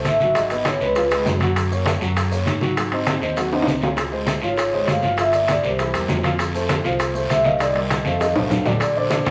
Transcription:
Already playing: grand piano A3 A4 C5
0.05 fingered electric bass G#1, vibraphone E5, high bongo, low bongo, high conga, high timbale, short guiro, maracas
0.20 grand piano F#3 F#4 F#5, high conga, short guiro, maracas
0.35 grand piano F#3 F#4 F#5, vibraphone D#5, high bongo, high conga, high timbale, long guiro, maracas
0.50 grand piano B3 B4 D#5, high bongo, high conga, high timbale, maracas
0.65 vibraphone C#5, high bongo, high conga, high timbale, short guiro, maracas
0.80 fingered electric bass C#2, grand piano G#3 G#4 B4, vibraphone B4, high bongo, high conga, short guiro, maracas
0.95 grand piano F3 F4 F5, high bongo, high conga, high timbale, long guiro, maracas
1.10 grand piano G#3 G#4 B4, high bongo, high conga, high timbale, maracas
1.25 fingered electric bass F#2, high bongo, low bongo, high conga, low timbale, short guiro, maracas
1.40 grand piano F#3 F#4 F#5, high conga, high timbale, short guiro, maracas
1.55 high bongo, high conga, high timbale, long guiro, maracas
1.71 grand piano A#3 A#4 C#5, high bongo, high conga, maracas
1.86 high bongo, high conga, high timbale, short guiro, maracas
2.01 fingered electric bass F#2, grand piano F#3 F#4 F#5, high bongo, high conga, short guiro, maracas
2.16 high bongo, high conga, high timbale, long guiro, maracas
2.31 grand piano A#3 A#4 C#5, high bongo, high conga, maracas
2.46 fingered electric bass G#2, high bongo, low bongo, high conga, high timbale, short guiro, maracas
2.61 grand piano F#3 F#4 F#5, high conga, short guiro, maracas
2.77 grand piano F#3 F#4 F#5, high bongo, high conga, high timbale, long guiro, maracas
2.91 grand piano C4 C5 D#5, high bongo, high conga, high timbale
3.07 high bongo, high conga, high timbale, short guiro, maracas
3.22 fingered electric bass D#2, grand piano C4 C5 D#5, high bongo, high conga, short guiro, maracas
3.37 grand piano F#3 F#4 F#5, high bongo, high conga, high timbale, long guiro, maracas
3.52 grand piano C4 C5 D#5, high bongo, high conga, high timbale
3.62 high timbale
3.67 fingered electric bass C#2, high bongo, low bongo, high conga, short guiro, maracas
3.81 grand piano F3 F4 F5, high conga, low timbale, short guiro, maracas
3.97 high bongo, high conga, high timbale, long guiro, maracas
4.12 grand piano G#3 G#4 C5, high bongo, high conga
4.27 high bongo, high conga, high timbale, short guiro, maracas
4.42 fingered electric bass G#1, grand piano F3 F4 F5, vibraphone C#5, high bongo, short guiro, maracas
4.57 high bongo, high conga, high timbale, long guiro, maracas
4.73 grand piano G#3 G#4 C5, high bongo, high conga
4.87 fingered electric bass G1, vibraphone F5, high bongo, low bongo, high conga, high timbale, low timbale, short guiro, maracas
5.02 grand piano F3 F4 F5, high conga, short guiro, maracas
5.17 grand piano F3 F4 F5, vibraphone E5, high bongo, high conga, high timbale, long guiro, maracas
5.33 grand piano A#3 A#4 D5, high bongo, high conga, high timbale, maracas
5.48 vibraphone D5, high bongo, high conga, high timbale, short guiro, maracas
5.63 fingered electric bass C2, grand piano G3 G4 A#4, vibraphone C5, high bongo, high conga, short guiro, maracas
5.78 grand piano E3 E4 E5, high bongo, high conga, high timbale, long guiro, maracas
5.94 fingered electric bass E2, grand piano G3 G4 A#4, high bongo, high conga, high timbale, maracas
6.08 fingered electric bass F2, high bongo, low bongo, high conga, low timbale, short guiro, maracas
6.23 grand piano F3 F4 F5, high conga, high timbale, short guiro, maracas
6.38 high bongo, high conga, high timbale, long guiro, maracas
6.54 grand piano A3 A4 C5, high bongo, high conga, maracas
6.69 high bongo, high conga, high timbale, short guiro, maracas
6.84 fingered electric bass C2, grand piano F3 F4 F5, vibraphone C5, high bongo, high conga, short guiro, maracas
6.99 high bongo, high conga, high timbale, long guiro, maracas
7.14 grand piano A3 A4 C5, high bongo, high conga, maracas
7.29 fingered electric bass C2, vibraphone E5, high bongo, low bongo, high conga, high timbale, short guiro, maracas
7.44 grand piano D#3 D#4 D#5, vibraphone F5, high conga, short guiro, maracas
7.59 grand piano D#3 D#4 D#5, vibraphone D5, high bongo, high conga, high timbale, long guiro, maracas
7.74 grand piano G3 G4 A#4, vibraphone D#5, high bongo, high conga, high timbale
7.90 high bongo, high conga, high timbale, short guiro, maracas
8.05 fingered electric bass F2, grand piano A3 A4 C5, vibraphone F5, high bongo, high conga, short guiro, maracas
8.20 grand piano D#3 D#4 D#5, high bongo, high timbale, long guiro, maracas
8.35 fingered electric bass C2, grand piano A3 A4 C5, low bongo, low conga, high timbale
8.50 fingered electric bass A#1, low bongo, low conga, high timbale, short guiro, maracas
8.65 grand piano D3 D4 D5, low bongo, low conga, low timbale, short guiro, maracas
8.80 vibraphone D5, high bongo, high conga, high timbale, long guiro, maracas
8.96 grand piano D3 D4 D5, vibraphone C5, high conga
9.10 grand piano D3 D4 D5, high bongo, high conga, high timbale, short guiro, maracas
9.25 fingered electric bass F2, grand piano F3 F4 A4, high conga, high timbale, short guiro, maracas

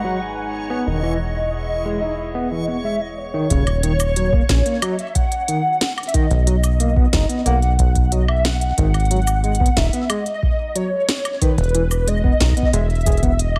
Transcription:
Already playing: acid bass G#1, ambient pad G#3 D#4 B4 F#5 A#5, synth texture C#5, soft synth lead F#5
0.04 tine electric piano F#3
0.21 soft synth lead G#5
0.70 tine electric piano B3
0.87 acid bass E1, tine electric piano D#3, ambient pad E3 E4 G#4 D#5, soft synth lead D#5
1.03 tine electric piano E3
1.86 tine electric piano G#3
2.02 tine electric piano D#4
2.35 tine electric piano B3
2.51 tine electric piano E3
2.68 tine electric piano B3
2.84 tine electric piano G#3, soft synth lead E5
3.01 soft synth lead D#5
3.17 soft synth lead C#5
3.34 tine electric piano D#3
3.50 acid bass D#1, tine electric piano C#3, kick, closed hi-hat
3.67 closed hi-hat, high woodblock
3.83 tine electric piano D#3, closed hi-hat
4.00 closed hi-hat, high woodblock, shaker
4.16 tine electric piano F#3, closed hi-hat
4.33 tine electric piano A#3, kick
4.49 acid bass A#1, tine electric piano C#4, kick, snare, closed hi-hat
4.66 tine electric piano A#3, closed hi-hat
4.82 tine electric piano F#3, soft synth lead D#5, closed hi-hat, high woodblock
4.99 soft synth lead E5, closed hi-hat
5.15 soft synth lead F#5, kick, closed hi-hat
5.32 closed hi-hat
5.48 tine electric piano D#3, closed hi-hat
5.81 snare, closed hi-hat
5.98 closed hi-hat, high woodblock
6.03 soft synth lead E5, closed hi-hat
6.09 closed hi-hat
6.14 tine electric piano D#3, soft synth lead D#5, kick, closed hi-hat
6.31 acid bass B1, closed hi-hat
6.47 tine electric piano F#3, closed hi-hat
6.64 closed hi-hat, high woodblock, shaker
6.80 tine electric piano A#3, closed hi-hat
6.96 tine electric piano B3, kick
7.13 acid bass F#1, tine electric piano D#4, kick, snare, closed hi-hat
7.29 tine electric piano B3, closed hi-hat
7.46 acid bass B1, tine electric piano A#3, soft synth lead F#5, closed hi-hat
7.62 closed hi-hat
7.79 acid bass B1, kick, closed hi-hat
7.95 kick, closed hi-hat
8.12 tine electric piano F#3, soft synth lead D#5, closed hi-hat
8.28 soft synth lead E5, high woodblock
8.45 soft synth lead F#5, snare, closed hi-hat
8.61 closed hi-hat
8.78 acid bass G#1, tine electric piano D#3, kick, closed hi-hat
8.94 closed hi-hat, high woodblock
9.00 closed hi-hat
9.05 closed hi-hat
9.11 tine electric piano F#3, closed hi-hat
9.16 closed hi-hat
9.22 closed hi-hat
9.27 closed hi-hat, high woodblock, shaker
9.44 tine electric piano G#3, closed hi-hat
9.55 closed hi-hat
9.60 tine electric piano B3, kick
9.66 closed hi-hat
9.77 acid bass D#1, tine electric piano D#4, soft synth lead E5, kick, snare, closed hi-hat
9.93 tine electric piano B3, closed hi-hat
10.10 tine electric piano G#3, soft synth lead D#5, closed hi-hat, high woodblock
10.26 closed hi-hat
10.43 kick
10.76 tine electric piano F#3, soft synth lead C#5, closed hi-hat
11.09 snare, closed hi-hat
11.25 closed hi-hat, high woodblock
11.42 tine electric piano D#3, soft synth lead B4, kick, closed hi-hat
11.58 acid bass E1, closed hi-hat
11.64 closed hi-hat
11.69 closed hi-hat
11.74 tine electric piano E3, closed hi-hat
11.91 high woodblock, shaker
12.07 tine electric piano G#3, soft synth lead D#5, closed hi-hat
12.24 tine electric piano B3, kick
12.40 acid bass B1, tine electric piano D#4, kick, snare, closed hi-hat
12.51 kick
12.57 tine electric piano B3, closed hi-hat
12.62 kick
12.73 acid bass E1, tine electric piano G#3, soft synth lead E5, closed hi-hat
12.90 closed hi-hat
12.95 closed hi-hat
13.01 closed hi-hat
13.06 acid bass E1, tine electric piano G#4, kick, closed hi-hat, shaker
13.12 closed hi-hat
13.17 closed hi-hat
13.23 tine electric piano B3, kick, closed hi-hat
13.39 soft synth lead D#5, closed hi-hat
13.56 soft synth lead E5, high woodblock

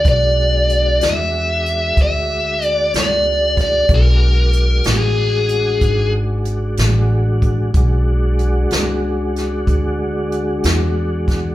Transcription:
0.04 upright bass B1, tonewheel organ G#3 D4 F#4, kick, closed hi-hat
0.09 lead electric guitar D5
0.69 closed hi-hat
1.01 upright bass E2, lead electric guitar E5, snare, closed hi-hat
1.66 closed hi-hat
1.97 upright bass D2, kick, closed hi-hat
2.02 lead electric guitar E5
2.61 closed hi-hat
2.66 lead electric guitar D5
2.94 upright bass C#2, snare, closed hi-hat
2.99 lead electric guitar D5
3.57 lead electric guitar D5, kick, snare, closed hi-hat
3.89 upright bass B1, tonewheel organ G#3 D4 F#4, kick, closed hi-hat
3.94 lead electric guitar A#4
4.53 closed hi-hat
4.84 upright bass A1, snare, closed hi-hat
4.91 lead electric guitar G#4
5.49 closed hi-hat
5.81 upright bass G#1, kick, closed hi-hat
6.45 closed hi-hat
6.77 upright bass A1, snare, closed hi-hat
7.42 kick, closed hi-hat
7.74 upright bass B1, tonewheel organ G#3 D4 F#4, kick, closed hi-hat
8.39 closed hi-hat
8.71 upright bass C#2, snare, closed hi-hat
9.36 snare, closed hi-hat
9.67 upright bass D2, kick, closed hi-hat
10.32 closed hi-hat
10.63 upright bass E2, snare, closed hi-hat
11.28 kick, snare, closed hi-hat

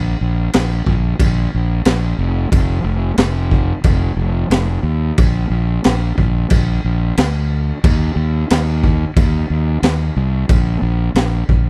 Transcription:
Already playing: fingered electric bass A#1
0.21 fingered electric bass A#1
0.53 fingered electric bass A#1, snare, crash
0.86 fingered electric bass A#1, kick
1.20 fingered electric bass A#1, kick, crash
1.54 fingered electric bass A#1
1.85 fingered electric bass A#1, snare, crash
2.18 fingered electric bass F1
2.52 fingered electric bass F1, kick, crash
2.84 fingered electric bass F1
3.18 fingered electric bass F1, snare, crash
3.51 kick
3.84 fingered electric bass F1, kick, crash
4.16 fingered electric bass F1
4.50 fingered electric bass F1, snare, crash
4.83 fingered electric bass D#2
5.18 fingered electric bass A#1, kick, crash
5.50 fingered electric bass A#1
5.84 fingered electric bass A#1, snare, crash
6.18 fingered electric bass A#1, kick
6.50 fingered electric bass A#1, kick, crash
6.84 fingered electric bass A#1
7.17 fingered electric bass D2, snare, crash
7.84 fingered electric bass D#2, kick, crash
8.16 fingered electric bass D#2
8.50 fingered electric bass D#2, snare, crash
8.83 kick
9.16 fingered electric bass D#2, kick, crash
9.50 fingered electric bass D#2
9.82 fingered electric bass D#2, snare, crash
10.16 fingered electric bass C2
10.49 fingered electric bass A#1, kick, crash
10.82 fingered electric bass A#1
11.15 fingered electric bass A#1, snare, crash
11.49 fingered electric bass A#1, kick

